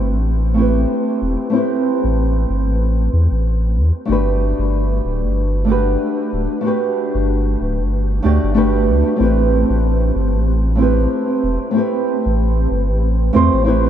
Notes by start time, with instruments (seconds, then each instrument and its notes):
Already playing: sub bass G1, nylon-string guitar A3 C4 E4 G4 B4
0.12 sub bass A1
0.54 nylon-string guitar A3 C4 E4
0.59 nylon-string guitar G4 B4
1.22 sub bass E1
1.50 nylon-string guitar A3 C4 E4
1.55 nylon-string guitar G4 B4
2.04 sub bass A1
2.50 sub bass G1
2.67 sub bass A1
3.13 sub bass E2
3.31 sub bass A1
3.77 sub bass E2
4.05 sub bass G1, nylon-string guitar A3 D4 F#4
4.11 nylon-string guitar G4 B4
4.59 sub bass G1
5.05 sub bass D1
5.23 sub bass G1
5.65 nylon-string guitar A3 D4 F#4
5.70 nylon-string guitar G4 B4
6.33 sub bass D1
6.61 nylon-string guitar A3 D4 F#4
6.66 nylon-string guitar G4 B4
7.15 sub bass G1
7.61 sub bass D1
7.79 sub bass G1
8.22 sub bass D2, nylon-string guitar A3 D4 F#4 G4 D5
8.43 sub bass G1
8.54 nylon-string guitar A3 D4 F#4 G4 B4
8.89 sub bass D2
9.16 sub bass A1, nylon-string guitar A3 C4 E4
9.22 nylon-string guitar G4 B4
9.70 sub bass A1
10.16 sub bass G1
10.34 sub bass A1
10.75 nylon-string guitar A3 C4 E4
10.81 nylon-string guitar G4 B4
11.44 sub bass E1
11.71 nylon-string guitar A3 C4 E4
11.76 nylon-string guitar G4 B4
12.26 sub bass A1
12.71 sub bass G1
12.89 sub bass A1
13.33 sub bass E2, nylon-string guitar A3 C4 E4 G4 C5
13.53 sub bass A1
13.64 nylon-string guitar A3 C4 E4 G4 B4